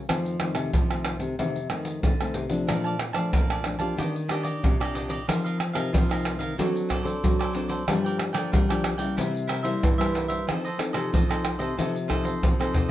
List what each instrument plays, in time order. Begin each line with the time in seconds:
0.09 nylon-string guitar F2 D#3 F3 A3 C4, pandeiro, tamborim, shaker, surdo
0.26 pandeiro, shaker
0.40 nylon-string guitar D#3 A3 C4, pandeiro, tamborim
0.55 nylon-string guitar C3, pandeiro, tamborim, shaker
0.73 nylon-string guitar F3, pandeiro, shaker, surdo
0.91 nylon-string guitar D#3 A3 C4, pandeiro, tamborim, shaker
1.05 pandeiro, tamborim, shaker
1.20 nylon-string guitar C3, pandeiro, shaker
1.39 nylon-string guitar F2 C3 D#3 A3 C4, pandeiro, shaker, surdo
1.56 pandeiro, shaker
1.70 nylon-string guitar D#3 A3 C4, pandeiro, tamborim, shaker
1.85 pandeiro, shaker
2.03 nylon-string guitar C3 D3, pandeiro, shaker, surdo
2.21 nylon-string guitar D#3 A3 C4, pandeiro, tamborim, shaker
2.34 nylon-string guitar C3, pandeiro
2.50 nylon-string guitar F3 A3 D4, pandeiro, shaker
2.67 nylon-string guitar A#2, cavaquinho A#4 D5 F5 A5, pandeiro, tamborim, shaker, surdo
2.84 cavaquinho D5 F5 A5, pandeiro, shaker
2.99 muted cavaquinho stroke, pandeiro, tamborim
3.13 nylon-string guitar F3 A3 D4, cavaquinho D5 F5 A5, pandeiro, tamborim, shaker
3.33 nylon-string guitar F2 A#2, cavaquinho A#4 D5 F5 A5, pandeiro, shaker, surdo
3.50 cavaquinho D5 F5 A5, pandeiro, tamborim, shaker
3.64 nylon-string guitar F3 A3 D4, pandeiro, tamborim, shaker
3.79 nylon-string guitar F3 A#3 D4 G4, cavaquinho D5 F5 A5, pandeiro, shaker
3.97 nylon-string guitar D#3, cavaquinho D4 G4 D5 D#5, pandeiro, shaker, surdo
4.15 muted cavaquinho stroke, pandeiro, shaker
4.28 nylon-string guitar A#3 D4 G4, cavaquinho D4 G4 D5 D#5, pandeiro, tamborim
4.43 cavaquinho G4 D5 D#5, pandeiro, shaker
4.63 nylon-string guitar A#2 C3, pandeiro, shaker, surdo
4.80 nylon-string guitar A#3 D4 G4, cavaquinho G4 D5 D#5, pandeiro, tamborim, shaker
4.94 cavaquinho D4 G4 D5 D#5, pandeiro
5.09 cavaquinho G4 D5 D#5, pandeiro, shaker
5.27 nylon-string guitar F3 C4 D#4 A#4, cavaquinho F4 A#4 D#5 F5, pandeiro, tamborim, shaker, surdo
5.44 cavaquinho A#4 D#5 F5, pandeiro, shaker
5.59 muted cavaquinho stroke, pandeiro, tamborim, shaker
5.73 nylon-string guitar C3 C4 D#4 A#4, cavaquinho A#4 D#5 F5, pandeiro, tamborim, shaker
5.93 nylon-string guitar C3 F3, cavaquinho F4 A#4 D#5 F5, pandeiro, shaker, surdo
6.09 nylon-string guitar C4 D#4 A#4, cavaquinho A#4 D#5 F5, pandeiro, tamborim, shaker
6.25 pandeiro, tamborim
6.39 nylon-string guitar D#3, cavaquinho A#4 D#5 F5, pandeiro, shaker
6.58 nylon-string guitar F#3 C4 D4 A4, cavaquinho F#4 A4 C5 D5, pandeiro, shaker, surdo
6.75 muted cavaquinho stroke, pandeiro, shaker
6.89 cavaquinho F#4 A4 C5 D5, pandeiro, tamborim, surdo
7.03 nylon-string guitar C4 D4 A4, cavaquinho A4 C5 D5, pandeiro, shaker
7.23 nylon-string guitar F#3, pandeiro, shaker, surdo
7.39 cavaquinho A4 C5 D5, pandeiro, tamborim, shaker
7.53 nylon-string guitar C4 D4 A4, cavaquinho F#4 A4 C5 D5, pandeiro, shaker
7.68 cavaquinho A4 C5 D5, pandeiro, shaker
7.88 nylon-string guitar G2 F3 G3 A#3 D4, cavaquinho F4 A#4 D5 G5, pandeiro, tamborim, shaker, surdo
8.05 cavaquinho A#4 D5 G5, pandeiro, shaker
8.19 muted cavaquinho stroke, pandeiro, tamborim
8.33 nylon-string guitar D3 F3 A#3 D4, cavaquinho A#4 D5 G5, pandeiro, tamborim, shaker
8.52 nylon-string guitar D3 G3, cavaquinho F4 A#4 D5 G5, pandeiro, shaker, surdo
8.69 nylon-string guitar F3 A#3 D4, cavaquinho A#4 D5 G5, pandeiro, tamborim, shaker
8.84 pandeiro, tamborim, shaker
8.98 nylon-string guitar C#3 G3 A#3 E4, cavaquinho A#4 D5 G5, pandeiro, shaker
9.16 nylon-string guitar C3, cavaquinho E4 A#4 C5 E5, pandeiro, shaker, surdo
9.34 muted cavaquinho stroke, pandeiro, shaker
9.47 cavaquinho E4 A#4 C5 E5, pandeiro, tamborim, shaker
9.63 nylon-string guitar G3 A#3 E4, cavaquinho A#4 C5 E5, pandeiro, shaker
9.83 nylon-string guitar G2 E3, pandeiro, shaker, surdo
9.98 nylon-string guitar G3 A#3 E4, cavaquinho A#4 C5 E5, pandeiro, tamborim, shaker
10.13 cavaquinho E4 A#4 C5 E5, pandeiro, shaker
10.28 cavaquinho A#4 C5 E5, pandeiro, shaker
10.47 nylon-string guitar F3 C4 D#4 A4, cavaquinho F4 A4 C5 D#5, pandeiro, tamborim, shaker, surdo
10.65 cavaquinho A4 C5 D#5, pandeiro, shaker
10.79 nylon-string guitar C4 D#4 A4, muted cavaquinho stroke, pandeiro, tamborim, shaker
10.93 nylon-string guitar C3, cavaquinho A4 C5 D#5, pandeiro, tamborim, shaker
11.12 nylon-string guitar C3 F3, cavaquinho F4 A4 C5 D#5, pandeiro, shaker, surdo
11.29 nylon-string guitar C4 D#4 A4, cavaquinho A4 C5 D#5, pandeiro, tamborim, shaker
11.45 pandeiro, tamborim
11.59 nylon-string guitar C3, cavaquinho A4 C5 D#5, pandeiro, shaker
11.77 nylon-string guitar C3 F3 C4 D#4 A4, cavaquinho F4 A4 C5 D#5, pandeiro, shaker, surdo
11.95 muted cavaquinho stroke, pandeiro, shaker
12.08 nylon-string guitar C4 D#4 A4, cavaquinho F4 A4 C5 D#5, pandeiro, tamborim, shaker, surdo
12.23 cavaquinho A4 C5 D#5, pandeiro, shaker
12.42 nylon-string guitar C3 F3, pandeiro, shaker, surdo
12.60 nylon-string guitar C4 D#4 A4, cavaquinho A4 C5 D#5, pandeiro, tamborim, shaker
12.73 cavaquinho F4 A4 C5 D#5, surdo, pandeiro